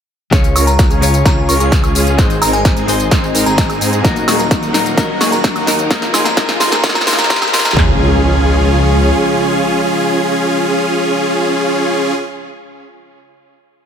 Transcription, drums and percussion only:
0.33 kick, snare, closed hi-hat, tambourine
0.44 closed hi-hat, tambourine
0.56 open hi-hat, tambourine, high woodblock
0.67 closed hi-hat, tambourine
0.79 kick, snare, closed hi-hat, tambourine
0.91 closed hi-hat, tambourine
1.02 open hi-hat, tambourine
1.14 closed hi-hat, tambourine
1.26 kick, snare, closed hi-hat, tambourine
1.49 open hi-hat, tambourine
1.60 closed hi-hat, tambourine
1.72 kick, snare, closed hi-hat, tambourine
1.84 closed hi-hat, tambourine, high woodblock
1.95 open hi-hat, tambourine
2.07 closed hi-hat, tambourine
2.18 kick, snare, closed hi-hat, tambourine
2.30 closed hi-hat, tambourine
2.42 open hi-hat, tambourine, high woodblock
2.53 closed hi-hat, tambourine
2.65 kick, snare, closed hi-hat, tambourine
2.77 closed hi-hat, tambourine
2.88 open hi-hat, tambourine
3.00 closed hi-hat, tambourine
3.11 kick, snare, closed hi-hat, tambourine
3.24 tambourine
3.35 open hi-hat, tambourine
3.46 closed hi-hat, tambourine
3.58 kick, snare, closed hi-hat, tambourine
3.70 closed hi-hat, tambourine, high woodblock
3.81 open hi-hat, tambourine
3.93 closed hi-hat, tambourine
4.05 kick, snare, closed hi-hat, tambourine
4.16 closed hi-hat, tambourine
4.28 snare, open hi-hat, tambourine, high woodblock
4.39 closed hi-hat, tambourine
4.51 kick, snare, closed hi-hat, tambourine
4.63 closed hi-hat, tambourine
4.74 snare, open hi-hat, tambourine
4.86 closed hi-hat, tambourine
4.98 kick, snare, closed hi-hat, tambourine
5.21 snare, open hi-hat, tambourine
5.32 closed hi-hat, tambourine
5.44 kick, snare, closed hi-hat, tambourine
5.56 closed hi-hat, tambourine, high woodblock
5.67 snare, open hi-hat, tambourine
5.79 closed hi-hat, tambourine
5.91 kick, snare, closed hi-hat, tambourine
6.02 snare, closed hi-hat, tambourine
6.14 snare, open hi-hat, tambourine, high woodblock
6.26 snare, closed hi-hat, tambourine
6.37 kick, snare, closed hi-hat, tambourine
6.49 snare, closed hi-hat, tambourine
6.60 snare, open hi-hat, tambourine
6.72 snare, closed hi-hat, tambourine
6.84 kick, snare, closed hi-hat, tambourine
6.89 snare
6.95 snare, tambourine
7.01 snare
7.07 snare, open hi-hat, tambourine
7.13 snare
7.19 snare, closed hi-hat, tambourine
7.24 snare
7.30 kick, snare, closed hi-hat, tambourine
7.36 snare
7.42 snare, closed hi-hat, tambourine, high woodblock
7.48 snare
7.54 snare, open hi-hat, tambourine
7.59 snare
7.65 snare, closed hi-hat, tambourine
7.71 snare
7.77 kick, clap, floor tom

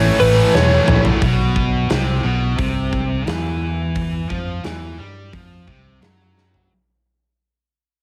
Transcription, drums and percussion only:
0.19 open hi-hat
0.55 snare
0.88 mid tom
1.05 floor tom
1.22 kick, open hi-hat
1.56 kick
1.90 snare, open hi-hat
2.58 kick, open hi-hat
2.93 kick
3.27 snare, open hi-hat
3.95 kick, open hi-hat
4.30 kick
4.64 snare, open hi-hat
5.33 kick, open hi-hat
5.68 kick
6.02 snare, open hi-hat
6.38 snare
6.54 floor tom

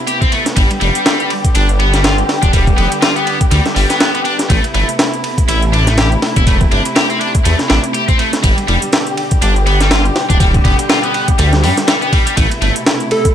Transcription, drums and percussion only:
0.07 closed hi-hat, ride
0.22 kick, closed hi-hat
0.32 ride
0.46 snare, closed hi-hat
0.56 kick, closed hi-hat, ride
0.71 closed hi-hat, ride
0.81 ride
0.95 closed hi-hat
1.06 snare, closed hi-hat, ride
1.20 closed hi-hat
1.30 ride
1.45 kick, closed hi-hat
1.55 closed hi-hat, ride
1.69 closed hi-hat
1.80 ride
1.94 snare, closed hi-hat
2.04 snare, closed hi-hat, ride
2.18 closed hi-hat
2.29 snare, ride
2.43 kick, closed hi-hat
2.53 kick, closed hi-hat, ride
2.67 kick, closed hi-hat
2.78 ride
2.92 closed hi-hat, ride
3.02 snare, closed hi-hat, ride
3.16 closed hi-hat
3.27 ride
3.41 kick, closed hi-hat
3.51 closed hi-hat, ride
3.66 snare, closed hi-hat
3.76 open hi-hat
3.90 snare, closed hi-hat
4.00 snare, closed hi-hat, ride
4.15 closed hi-hat, ride
4.25 ride
4.39 snare, closed hi-hat
4.50 kick, closed hi-hat, ride
4.64 closed hi-hat, ride
4.74 ride
4.89 closed hi-hat
4.99 snare, closed hi-hat, ride
5.14 closed hi-hat
5.24 ride
5.38 kick, closed hi-hat
5.48 closed hi-hat, ride
5.62 closed hi-hat
5.73 ride
5.87 snare, closed hi-hat
5.97 snare, closed hi-hat, ride
6.12 closed hi-hat
6.22 snare, ride
6.36 kick, closed hi-hat
6.47 kick, closed hi-hat, ride
6.61 kick, closed hi-hat
6.72 ride
6.85 closed hi-hat, ride
6.96 snare, closed hi-hat, ride
7.10 closed hi-hat
7.21 ride
7.35 kick, closed hi-hat
7.45 closed hi-hat, ride
7.59 snare, closed hi-hat
7.70 snare, ride
7.84 closed hi-hat
7.94 closed hi-hat, ride
8.08 kick, closed hi-hat
8.19 ride
8.33 snare, closed hi-hat
8.44 kick, closed hi-hat, ride
8.58 closed hi-hat, ride
8.68 ride
8.82 closed hi-hat
8.93 snare, closed hi-hat, ride
9.07 closed hi-hat
9.17 ride
9.31 kick, closed hi-hat
9.42 closed hi-hat, ride
9.56 closed hi-hat
9.67 ride
9.80 snare, closed hi-hat
9.91 snare, closed hi-hat, ride
10.05 closed hi-hat
10.16 snare, ride
10.30 kick, closed hi-hat
10.40 kick, closed hi-hat, ride
10.54 kick, closed hi-hat
10.65 kick, ride
10.79 closed hi-hat, ride
10.90 snare, closed hi-hat, ride
11.03 closed hi-hat
11.14 ride
11.28 kick, closed hi-hat
11.39 closed hi-hat, ride
11.53 snare, closed hi-hat
11.64 open hi-hat
11.77 snare, closed hi-hat
11.88 snare, closed hi-hat, ride
12.02 closed hi-hat
12.13 kick, ride
12.27 closed hi-hat, ride
12.37 kick, closed hi-hat, ride
12.51 closed hi-hat, ride
12.62 ride
12.76 closed hi-hat
12.86 snare, closed hi-hat, ride
13.00 closed hi-hat
13.11 ride
13.25 kick, closed hi-hat

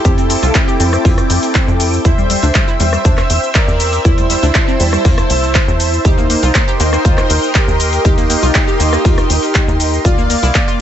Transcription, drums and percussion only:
0.05 kick, cabasa, shaker
0.18 closed hi-hat, cabasa
0.30 open hi-hat, cabasa, shaker
0.43 closed hi-hat, cabasa
0.55 kick, snare, clap, cabasa, shaker
0.69 cabasa
0.80 open hi-hat, cabasa, shaker
0.93 cross-stick, cabasa
1.05 kick, open hi-hat, cabasa
1.18 cross-stick, closed hi-hat, cabasa
1.30 open hi-hat, cabasa, shaker
1.43 closed hi-hat, cabasa
1.55 kick, snare, clap, cabasa, shaker
1.68 cabasa
1.80 snare, open hi-hat, cabasa, shaker
1.93 cabasa
2.05 kick, cabasa, shaker
2.18 cabasa
2.30 open hi-hat, cabasa, shaker
2.43 closed hi-hat, cabasa
2.55 kick, snare, clap, cabasa, shaker
2.68 cabasa
2.80 snare, open hi-hat, cabasa, shaker
2.93 cross-stick, cabasa
3.05 kick, cabasa, shaker
3.17 cross-stick, snare, clap, cabasa
3.30 open hi-hat, cabasa, shaker
3.43 cabasa
3.55 kick, snare, clap, cabasa, shaker
3.68 cabasa
3.80 open hi-hat, cabasa, shaker
3.93 closed hi-hat, cabasa
4.05 kick, cabasa, shaker
4.18 closed hi-hat, cabasa
4.30 open hi-hat, cabasa, shaker
4.43 closed hi-hat, cabasa
4.55 kick, snare, clap, cabasa, shaker
4.68 cabasa
4.80 open hi-hat, cabasa, shaker
4.93 cross-stick, cabasa
5.05 kick, open hi-hat, cabasa
5.18 cross-stick, closed hi-hat, cabasa
5.30 open hi-hat, cabasa, shaker
5.43 cabasa
5.55 kick, snare, clap, cabasa, shaker
5.68 cabasa
5.80 open hi-hat, cabasa, shaker
5.93 cabasa
6.05 kick, cabasa, shaker
6.18 cabasa
6.30 open hi-hat, cabasa, shaker
6.43 closed hi-hat, cabasa
6.55 kick, snare, clap, cabasa, shaker
6.68 cabasa
6.80 snare, open hi-hat, cabasa, shaker
6.93 cross-stick, cabasa
7.05 kick, cabasa, shaker
7.17 cross-stick, snare, clap, cabasa
7.30 open hi-hat, cabasa, shaker
7.43 cabasa
7.55 kick, snare, clap, cabasa, shaker
7.68 cabasa
7.80 open hi-hat, cabasa, shaker
7.93 closed hi-hat, cabasa
8.05 kick, cabasa, shaker
8.18 closed hi-hat, cabasa
8.30 open hi-hat, cabasa, shaker
8.43 closed hi-hat, cabasa
8.55 kick, snare, clap, cabasa, shaker
8.68 cabasa
8.80 open hi-hat, cabasa, shaker
8.93 cross-stick, cabasa
9.05 kick, open hi-hat, cabasa
9.18 cross-stick, closed hi-hat, cabasa
9.30 open hi-hat, cabasa, shaker
9.43 closed hi-hat, cabasa
9.55 kick, snare, clap, cabasa, shaker
9.68 cabasa
9.80 snare, open hi-hat, cabasa, shaker
9.93 cabasa
10.05 kick, cabasa, shaker
10.18 cabasa
10.30 open hi-hat, cabasa, shaker
10.43 closed hi-hat, cabasa
10.55 kick, snare, clap, cabasa, shaker
10.68 cabasa

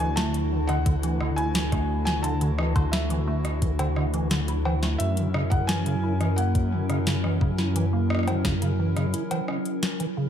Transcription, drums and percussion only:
0.00 closed hi-hat
0.17 snare, closed hi-hat
0.34 closed hi-hat
0.69 cross-stick, closed hi-hat
0.86 kick, closed hi-hat
1.03 closed hi-hat
1.21 cross-stick
1.38 closed hi-hat
1.55 snare, closed hi-hat
1.72 kick, cross-stick, closed hi-hat
2.07 snare, closed hi-hat
2.24 closed hi-hat
2.41 closed hi-hat
2.58 cross-stick
2.76 kick, closed hi-hat, cowbell
2.93 snare, closed hi-hat
3.10 closed hi-hat
3.45 cross-stick, closed hi-hat
3.62 kick, closed hi-hat
3.79 closed hi-hat, cowbell
3.96 cross-stick
4.14 closed hi-hat
4.31 snare, closed hi-hat
4.48 closed hi-hat
4.65 cowbell
4.83 snare, closed hi-hat
5.00 closed hi-hat
5.17 closed hi-hat
5.34 cross-stick
5.52 kick, closed hi-hat
5.69 snare, closed hi-hat
5.86 closed hi-hat
6.21 cross-stick, closed hi-hat
6.38 closed hi-hat
6.55 kick, closed hi-hat
6.90 cross-stick, closed hi-hat
7.07 snare, closed hi-hat
7.24 cross-stick
7.41 kick
7.58 snare
7.76 closed hi-hat
8.10 cross-stick
8.15 cross-stick
8.19 cross-stick
8.23 cross-stick
8.28 closed hi-hat, cowbell
8.45 kick, snare, closed hi-hat
8.62 closed hi-hat
8.97 cross-stick, closed hi-hat
9.14 closed hi-hat
9.31 closed hi-hat, cowbell
9.48 cross-stick
9.65 closed hi-hat
9.83 snare, closed hi-hat
10.00 closed hi-hat

